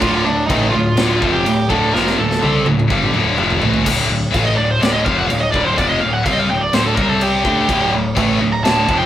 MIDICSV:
0, 0, Header, 1, 5, 480
1, 0, Start_track
1, 0, Key_signature, -1, "minor"
1, 0, Tempo, 478851
1, 22, Time_signature, 4, 2, 24, 8
1, 9080, End_track
2, 0, Start_track
2, 0, Title_t, "Lead electric guitar"
2, 0, Program_c, 0, 29
2, 13, Note_on_c, 0, 65, 99
2, 249, Note_off_c, 0, 65, 0
2, 253, Note_on_c, 0, 62, 79
2, 466, Note_off_c, 0, 62, 0
2, 470, Note_on_c, 0, 63, 85
2, 691, Note_off_c, 0, 63, 0
2, 695, Note_on_c, 0, 65, 85
2, 1324, Note_on_c, 0, 67, 93
2, 1341, Note_off_c, 0, 65, 0
2, 1699, Note_off_c, 0, 67, 0
2, 1703, Note_on_c, 0, 69, 95
2, 1942, Note_off_c, 0, 69, 0
2, 1946, Note_on_c, 0, 70, 110
2, 2191, Note_off_c, 0, 70, 0
2, 2195, Note_on_c, 0, 69, 94
2, 2640, Note_off_c, 0, 69, 0
2, 4354, Note_on_c, 0, 77, 81
2, 4457, Note_off_c, 0, 77, 0
2, 4461, Note_on_c, 0, 75, 86
2, 4579, Note_off_c, 0, 75, 0
2, 4583, Note_on_c, 0, 74, 89
2, 4703, Note_off_c, 0, 74, 0
2, 4718, Note_on_c, 0, 72, 85
2, 4831, Note_off_c, 0, 72, 0
2, 4834, Note_on_c, 0, 74, 85
2, 4933, Note_off_c, 0, 74, 0
2, 4937, Note_on_c, 0, 75, 87
2, 5059, Note_off_c, 0, 75, 0
2, 5059, Note_on_c, 0, 77, 91
2, 5178, Note_on_c, 0, 78, 98
2, 5181, Note_off_c, 0, 77, 0
2, 5282, Note_on_c, 0, 77, 85
2, 5300, Note_off_c, 0, 78, 0
2, 5412, Note_off_c, 0, 77, 0
2, 5422, Note_on_c, 0, 75, 84
2, 5524, Note_off_c, 0, 75, 0
2, 5528, Note_on_c, 0, 74, 90
2, 5655, Note_off_c, 0, 74, 0
2, 5669, Note_on_c, 0, 72, 77
2, 5786, Note_off_c, 0, 72, 0
2, 5786, Note_on_c, 0, 74, 86
2, 5894, Note_off_c, 0, 74, 0
2, 5898, Note_on_c, 0, 75, 86
2, 6014, Note_on_c, 0, 77, 89
2, 6020, Note_off_c, 0, 75, 0
2, 6144, Note_off_c, 0, 77, 0
2, 6144, Note_on_c, 0, 78, 110
2, 6259, Note_off_c, 0, 78, 0
2, 6263, Note_on_c, 0, 77, 80
2, 6342, Note_off_c, 0, 77, 0
2, 6342, Note_on_c, 0, 75, 74
2, 6408, Note_off_c, 0, 75, 0
2, 6412, Note_on_c, 0, 77, 85
2, 6497, Note_off_c, 0, 77, 0
2, 6519, Note_on_c, 0, 79, 93
2, 6628, Note_on_c, 0, 74, 86
2, 6630, Note_off_c, 0, 79, 0
2, 6756, Note_off_c, 0, 74, 0
2, 6756, Note_on_c, 0, 72, 80
2, 6868, Note_off_c, 0, 72, 0
2, 6875, Note_on_c, 0, 69, 84
2, 6965, Note_off_c, 0, 69, 0
2, 6965, Note_on_c, 0, 70, 110
2, 7118, Note_off_c, 0, 70, 0
2, 7118, Note_on_c, 0, 69, 78
2, 7228, Note_off_c, 0, 69, 0
2, 7247, Note_on_c, 0, 67, 74
2, 7914, Note_off_c, 0, 67, 0
2, 8546, Note_on_c, 0, 82, 96
2, 8655, Note_off_c, 0, 82, 0
2, 8659, Note_on_c, 0, 81, 100
2, 8993, Note_off_c, 0, 81, 0
2, 9001, Note_on_c, 0, 79, 111
2, 9080, Note_off_c, 0, 79, 0
2, 9080, End_track
3, 0, Start_track
3, 0, Title_t, "Distorted electric guitar"
3, 0, Program_c, 1, 30
3, 27, Note_on_c, 1, 45, 113
3, 28, Note_on_c, 1, 38, 98
3, 29, Note_on_c, 1, 50, 120
3, 248, Note_off_c, 1, 38, 0
3, 254, Note_off_c, 1, 45, 0
3, 259, Note_off_c, 1, 50, 0
3, 261, Note_on_c, 1, 38, 67
3, 266, Note_on_c, 1, 45, 85
3, 454, Note_off_c, 1, 38, 0
3, 457, Note_off_c, 1, 45, 0
3, 493, Note_on_c, 1, 45, 87
3, 500, Note_on_c, 1, 52, 82
3, 504, Note_on_c, 1, 57, 105
3, 732, Note_off_c, 1, 45, 0
3, 735, Note_off_c, 1, 52, 0
3, 738, Note_off_c, 1, 57, 0
3, 746, Note_on_c, 1, 38, 63
3, 753, Note_on_c, 1, 45, 75
3, 938, Note_off_c, 1, 38, 0
3, 942, Note_off_c, 1, 45, 0
3, 977, Note_on_c, 1, 38, 88
3, 981, Note_on_c, 1, 45, 101
3, 983, Note_on_c, 1, 50, 112
3, 1200, Note_off_c, 1, 38, 0
3, 1204, Note_on_c, 1, 41, 89
3, 1215, Note_off_c, 1, 45, 0
3, 1218, Note_off_c, 1, 50, 0
3, 1219, Note_on_c, 1, 48, 84
3, 1224, Note_on_c, 1, 53, 102
3, 1449, Note_off_c, 1, 41, 0
3, 1456, Note_off_c, 1, 48, 0
3, 1458, Note_off_c, 1, 53, 0
3, 1461, Note_on_c, 1, 38, 72
3, 1464, Note_on_c, 1, 45, 80
3, 1656, Note_off_c, 1, 38, 0
3, 1658, Note_off_c, 1, 45, 0
3, 1697, Note_on_c, 1, 38, 84
3, 1699, Note_on_c, 1, 45, 97
3, 1707, Note_on_c, 1, 50, 105
3, 1936, Note_off_c, 1, 38, 0
3, 1936, Note_off_c, 1, 45, 0
3, 1941, Note_off_c, 1, 50, 0
3, 1942, Note_on_c, 1, 41, 98
3, 1949, Note_on_c, 1, 48, 104
3, 1954, Note_on_c, 1, 53, 99
3, 2178, Note_off_c, 1, 41, 0
3, 2182, Note_off_c, 1, 48, 0
3, 2184, Note_off_c, 1, 53, 0
3, 2194, Note_on_c, 1, 38, 61
3, 2204, Note_on_c, 1, 45, 67
3, 2384, Note_off_c, 1, 38, 0
3, 2389, Note_off_c, 1, 45, 0
3, 2430, Note_on_c, 1, 48, 82
3, 2431, Note_on_c, 1, 55, 90
3, 2436, Note_on_c, 1, 60, 97
3, 2663, Note_off_c, 1, 48, 0
3, 2663, Note_off_c, 1, 55, 0
3, 2666, Note_off_c, 1, 60, 0
3, 2675, Note_on_c, 1, 38, 67
3, 2678, Note_on_c, 1, 45, 63
3, 2865, Note_off_c, 1, 38, 0
3, 2866, Note_off_c, 1, 45, 0
3, 2908, Note_on_c, 1, 50, 96
3, 2910, Note_on_c, 1, 43, 86
3, 2917, Note_on_c, 1, 55, 103
3, 3137, Note_off_c, 1, 50, 0
3, 3143, Note_off_c, 1, 43, 0
3, 3145, Note_off_c, 1, 55, 0
3, 3147, Note_on_c, 1, 38, 72
3, 3149, Note_on_c, 1, 50, 90
3, 3152, Note_on_c, 1, 45, 95
3, 3369, Note_off_c, 1, 38, 0
3, 3373, Note_on_c, 1, 41, 88
3, 3375, Note_off_c, 1, 45, 0
3, 3378, Note_off_c, 1, 50, 0
3, 3379, Note_on_c, 1, 48, 95
3, 3382, Note_on_c, 1, 53, 108
3, 3601, Note_off_c, 1, 41, 0
3, 3602, Note_off_c, 1, 48, 0
3, 3605, Note_on_c, 1, 45, 93
3, 3606, Note_on_c, 1, 52, 93
3, 3607, Note_off_c, 1, 53, 0
3, 3611, Note_on_c, 1, 57, 91
3, 3842, Note_off_c, 1, 45, 0
3, 3850, Note_off_c, 1, 52, 0
3, 3852, Note_on_c, 1, 38, 99
3, 3854, Note_off_c, 1, 57, 0
3, 3854, Note_on_c, 1, 45, 99
3, 3861, Note_on_c, 1, 50, 101
3, 4077, Note_off_c, 1, 38, 0
3, 4084, Note_off_c, 1, 45, 0
3, 4089, Note_on_c, 1, 38, 65
3, 4096, Note_on_c, 1, 45, 70
3, 4099, Note_off_c, 1, 50, 0
3, 4292, Note_off_c, 1, 38, 0
3, 4295, Note_off_c, 1, 45, 0
3, 4317, Note_on_c, 1, 45, 99
3, 4328, Note_on_c, 1, 52, 100
3, 4333, Note_on_c, 1, 57, 97
3, 4567, Note_off_c, 1, 45, 0
3, 4572, Note_off_c, 1, 52, 0
3, 4572, Note_on_c, 1, 38, 71
3, 4575, Note_off_c, 1, 57, 0
3, 4580, Note_on_c, 1, 45, 68
3, 4773, Note_off_c, 1, 38, 0
3, 4777, Note_off_c, 1, 45, 0
3, 4812, Note_on_c, 1, 38, 91
3, 4818, Note_on_c, 1, 45, 107
3, 4821, Note_on_c, 1, 50, 103
3, 5054, Note_off_c, 1, 38, 0
3, 5057, Note_off_c, 1, 45, 0
3, 5058, Note_off_c, 1, 50, 0
3, 5060, Note_on_c, 1, 41, 78
3, 5068, Note_on_c, 1, 48, 89
3, 5071, Note_on_c, 1, 53, 109
3, 5294, Note_off_c, 1, 41, 0
3, 5298, Note_on_c, 1, 38, 68
3, 5302, Note_off_c, 1, 48, 0
3, 5303, Note_off_c, 1, 53, 0
3, 5309, Note_on_c, 1, 45, 80
3, 5496, Note_off_c, 1, 38, 0
3, 5501, Note_off_c, 1, 45, 0
3, 5536, Note_on_c, 1, 38, 89
3, 5542, Note_on_c, 1, 45, 105
3, 5544, Note_on_c, 1, 50, 92
3, 5774, Note_off_c, 1, 38, 0
3, 5778, Note_off_c, 1, 45, 0
3, 5778, Note_on_c, 1, 41, 108
3, 5780, Note_off_c, 1, 50, 0
3, 5782, Note_on_c, 1, 48, 93
3, 5787, Note_on_c, 1, 53, 109
3, 6016, Note_off_c, 1, 41, 0
3, 6018, Note_off_c, 1, 48, 0
3, 6021, Note_off_c, 1, 53, 0
3, 6033, Note_on_c, 1, 38, 66
3, 6037, Note_on_c, 1, 45, 76
3, 6223, Note_off_c, 1, 38, 0
3, 6225, Note_off_c, 1, 45, 0
3, 6273, Note_on_c, 1, 48, 91
3, 6276, Note_on_c, 1, 55, 102
3, 6279, Note_on_c, 1, 60, 94
3, 6502, Note_off_c, 1, 48, 0
3, 6504, Note_off_c, 1, 55, 0
3, 6506, Note_off_c, 1, 60, 0
3, 6506, Note_on_c, 1, 38, 66
3, 6510, Note_on_c, 1, 45, 73
3, 6698, Note_off_c, 1, 38, 0
3, 6700, Note_off_c, 1, 45, 0
3, 6747, Note_on_c, 1, 38, 94
3, 6752, Note_on_c, 1, 45, 96
3, 6758, Note_on_c, 1, 50, 107
3, 6979, Note_off_c, 1, 38, 0
3, 6982, Note_off_c, 1, 45, 0
3, 6985, Note_off_c, 1, 50, 0
3, 6990, Note_on_c, 1, 55, 95
3, 6992, Note_on_c, 1, 48, 101
3, 7004, Note_on_c, 1, 60, 92
3, 7457, Note_off_c, 1, 55, 0
3, 7460, Note_off_c, 1, 48, 0
3, 7461, Note_on_c, 1, 50, 104
3, 7464, Note_off_c, 1, 60, 0
3, 7465, Note_on_c, 1, 62, 105
3, 7468, Note_on_c, 1, 57, 90
3, 7695, Note_off_c, 1, 50, 0
3, 7697, Note_off_c, 1, 62, 0
3, 7698, Note_off_c, 1, 57, 0
3, 7703, Note_on_c, 1, 38, 107
3, 7709, Note_on_c, 1, 45, 107
3, 7711, Note_on_c, 1, 50, 114
3, 7933, Note_off_c, 1, 38, 0
3, 7934, Note_off_c, 1, 45, 0
3, 7940, Note_off_c, 1, 50, 0
3, 7945, Note_on_c, 1, 38, 74
3, 7946, Note_on_c, 1, 45, 79
3, 8136, Note_off_c, 1, 38, 0
3, 8136, Note_off_c, 1, 45, 0
3, 8170, Note_on_c, 1, 45, 89
3, 8175, Note_on_c, 1, 52, 103
3, 8188, Note_on_c, 1, 57, 99
3, 8408, Note_off_c, 1, 45, 0
3, 8411, Note_off_c, 1, 52, 0
3, 8417, Note_off_c, 1, 57, 0
3, 8419, Note_on_c, 1, 45, 68
3, 8421, Note_on_c, 1, 38, 64
3, 8612, Note_off_c, 1, 38, 0
3, 8612, Note_off_c, 1, 45, 0
3, 8667, Note_on_c, 1, 38, 96
3, 8670, Note_on_c, 1, 45, 102
3, 8673, Note_on_c, 1, 50, 105
3, 8896, Note_off_c, 1, 38, 0
3, 8897, Note_off_c, 1, 45, 0
3, 8899, Note_off_c, 1, 50, 0
3, 8903, Note_on_c, 1, 41, 86
3, 8905, Note_on_c, 1, 48, 96
3, 8911, Note_on_c, 1, 53, 91
3, 9080, Note_off_c, 1, 41, 0
3, 9080, Note_off_c, 1, 48, 0
3, 9080, Note_off_c, 1, 53, 0
3, 9080, End_track
4, 0, Start_track
4, 0, Title_t, "Picked electric bass"
4, 0, Program_c, 2, 34
4, 20, Note_on_c, 2, 26, 104
4, 245, Note_off_c, 2, 26, 0
4, 277, Note_on_c, 2, 26, 83
4, 494, Note_off_c, 2, 26, 0
4, 502, Note_on_c, 2, 33, 93
4, 727, Note_off_c, 2, 33, 0
4, 744, Note_on_c, 2, 26, 78
4, 968, Note_off_c, 2, 26, 0
4, 987, Note_on_c, 2, 26, 97
4, 1210, Note_off_c, 2, 26, 0
4, 1227, Note_on_c, 2, 29, 95
4, 1451, Note_off_c, 2, 29, 0
4, 1475, Note_on_c, 2, 26, 82
4, 1695, Note_off_c, 2, 26, 0
4, 1708, Note_on_c, 2, 26, 97
4, 1931, Note_off_c, 2, 26, 0
4, 1950, Note_on_c, 2, 29, 103
4, 2173, Note_off_c, 2, 29, 0
4, 2191, Note_on_c, 2, 26, 84
4, 2414, Note_off_c, 2, 26, 0
4, 2431, Note_on_c, 2, 36, 98
4, 2654, Note_off_c, 2, 36, 0
4, 2671, Note_on_c, 2, 26, 77
4, 2894, Note_off_c, 2, 26, 0
4, 2914, Note_on_c, 2, 31, 103
4, 3136, Note_off_c, 2, 31, 0
4, 3146, Note_on_c, 2, 26, 91
4, 3372, Note_off_c, 2, 26, 0
4, 3380, Note_on_c, 2, 29, 102
4, 3609, Note_off_c, 2, 29, 0
4, 3627, Note_on_c, 2, 33, 97
4, 3852, Note_off_c, 2, 33, 0
4, 3876, Note_on_c, 2, 26, 96
4, 4097, Note_off_c, 2, 26, 0
4, 4108, Note_on_c, 2, 26, 86
4, 4333, Note_off_c, 2, 26, 0
4, 4354, Note_on_c, 2, 33, 96
4, 4575, Note_off_c, 2, 33, 0
4, 4590, Note_on_c, 2, 26, 79
4, 4813, Note_off_c, 2, 26, 0
4, 4834, Note_on_c, 2, 26, 95
4, 5055, Note_off_c, 2, 26, 0
4, 5076, Note_on_c, 2, 29, 101
4, 5297, Note_off_c, 2, 29, 0
4, 5321, Note_on_c, 2, 26, 86
4, 5539, Note_off_c, 2, 26, 0
4, 5562, Note_on_c, 2, 26, 102
4, 5779, Note_off_c, 2, 26, 0
4, 5797, Note_on_c, 2, 29, 104
4, 6016, Note_off_c, 2, 29, 0
4, 6047, Note_on_c, 2, 26, 79
4, 6262, Note_off_c, 2, 26, 0
4, 6278, Note_on_c, 2, 36, 94
4, 6496, Note_off_c, 2, 36, 0
4, 6523, Note_on_c, 2, 26, 81
4, 6739, Note_off_c, 2, 26, 0
4, 6749, Note_on_c, 2, 26, 93
4, 6971, Note_off_c, 2, 26, 0
4, 6992, Note_on_c, 2, 36, 97
4, 7435, Note_off_c, 2, 36, 0
4, 7470, Note_on_c, 2, 38, 93
4, 7690, Note_off_c, 2, 38, 0
4, 7710, Note_on_c, 2, 26, 102
4, 7930, Note_off_c, 2, 26, 0
4, 7948, Note_on_c, 2, 26, 90
4, 8168, Note_off_c, 2, 26, 0
4, 8187, Note_on_c, 2, 33, 102
4, 8408, Note_off_c, 2, 33, 0
4, 8442, Note_on_c, 2, 26, 84
4, 8655, Note_off_c, 2, 26, 0
4, 8682, Note_on_c, 2, 26, 91
4, 8894, Note_off_c, 2, 26, 0
4, 8912, Note_on_c, 2, 29, 90
4, 9080, Note_off_c, 2, 29, 0
4, 9080, End_track
5, 0, Start_track
5, 0, Title_t, "Drums"
5, 16, Note_on_c, 9, 49, 66
5, 18, Note_on_c, 9, 36, 112
5, 116, Note_off_c, 9, 49, 0
5, 118, Note_off_c, 9, 36, 0
5, 500, Note_on_c, 9, 36, 117
5, 500, Note_on_c, 9, 49, 71
5, 600, Note_off_c, 9, 36, 0
5, 600, Note_off_c, 9, 49, 0
5, 972, Note_on_c, 9, 49, 62
5, 980, Note_on_c, 9, 38, 118
5, 1073, Note_off_c, 9, 49, 0
5, 1081, Note_off_c, 9, 38, 0
5, 1223, Note_on_c, 9, 36, 112
5, 1323, Note_off_c, 9, 36, 0
5, 1464, Note_on_c, 9, 49, 68
5, 1564, Note_off_c, 9, 49, 0
5, 1705, Note_on_c, 9, 36, 96
5, 1805, Note_off_c, 9, 36, 0
5, 1959, Note_on_c, 9, 38, 64
5, 2059, Note_off_c, 9, 38, 0
5, 2073, Note_on_c, 9, 38, 62
5, 2173, Note_off_c, 9, 38, 0
5, 2318, Note_on_c, 9, 38, 66
5, 2419, Note_off_c, 9, 38, 0
5, 2433, Note_on_c, 9, 48, 85
5, 2533, Note_off_c, 9, 48, 0
5, 2667, Note_on_c, 9, 48, 93
5, 2767, Note_off_c, 9, 48, 0
5, 2803, Note_on_c, 9, 47, 82
5, 2903, Note_off_c, 9, 47, 0
5, 2911, Note_on_c, 9, 36, 119
5, 3011, Note_off_c, 9, 36, 0
5, 3034, Note_on_c, 9, 47, 75
5, 3134, Note_off_c, 9, 47, 0
5, 3147, Note_on_c, 9, 45, 101
5, 3247, Note_off_c, 9, 45, 0
5, 3389, Note_on_c, 9, 45, 106
5, 3489, Note_off_c, 9, 45, 0
5, 3513, Note_on_c, 9, 43, 83
5, 3613, Note_off_c, 9, 43, 0
5, 3626, Note_on_c, 9, 43, 96
5, 3726, Note_off_c, 9, 43, 0
5, 3746, Note_on_c, 9, 43, 97
5, 3846, Note_off_c, 9, 43, 0
5, 3871, Note_on_c, 9, 36, 116
5, 3871, Note_on_c, 9, 49, 69
5, 3871, Note_on_c, 9, 57, 124
5, 3971, Note_off_c, 9, 36, 0
5, 3972, Note_off_c, 9, 49, 0
5, 3972, Note_off_c, 9, 57, 0
5, 4353, Note_on_c, 9, 36, 119
5, 4355, Note_on_c, 9, 49, 75
5, 4453, Note_off_c, 9, 36, 0
5, 4456, Note_off_c, 9, 49, 0
5, 4836, Note_on_c, 9, 49, 76
5, 4844, Note_on_c, 9, 38, 117
5, 4937, Note_off_c, 9, 49, 0
5, 4945, Note_off_c, 9, 38, 0
5, 5073, Note_on_c, 9, 36, 109
5, 5173, Note_off_c, 9, 36, 0
5, 5312, Note_on_c, 9, 49, 70
5, 5412, Note_off_c, 9, 49, 0
5, 5553, Note_on_c, 9, 36, 103
5, 5653, Note_off_c, 9, 36, 0
5, 5794, Note_on_c, 9, 36, 100
5, 5801, Note_on_c, 9, 49, 61
5, 5895, Note_off_c, 9, 36, 0
5, 5901, Note_off_c, 9, 49, 0
5, 6273, Note_on_c, 9, 36, 114
5, 6275, Note_on_c, 9, 49, 64
5, 6373, Note_off_c, 9, 36, 0
5, 6375, Note_off_c, 9, 49, 0
5, 6747, Note_on_c, 9, 49, 67
5, 6755, Note_on_c, 9, 38, 118
5, 6848, Note_off_c, 9, 49, 0
5, 6856, Note_off_c, 9, 38, 0
5, 6991, Note_on_c, 9, 36, 126
5, 7091, Note_off_c, 9, 36, 0
5, 7228, Note_on_c, 9, 49, 79
5, 7328, Note_off_c, 9, 49, 0
5, 7466, Note_on_c, 9, 36, 105
5, 7566, Note_off_c, 9, 36, 0
5, 7708, Note_on_c, 9, 36, 106
5, 7712, Note_on_c, 9, 49, 72
5, 7808, Note_off_c, 9, 36, 0
5, 7812, Note_off_c, 9, 49, 0
5, 8186, Note_on_c, 9, 36, 116
5, 8189, Note_on_c, 9, 49, 75
5, 8286, Note_off_c, 9, 36, 0
5, 8289, Note_off_c, 9, 49, 0
5, 8671, Note_on_c, 9, 49, 65
5, 8679, Note_on_c, 9, 38, 127
5, 8771, Note_off_c, 9, 49, 0
5, 8779, Note_off_c, 9, 38, 0
5, 8908, Note_on_c, 9, 36, 115
5, 9008, Note_off_c, 9, 36, 0
5, 9080, End_track
0, 0, End_of_file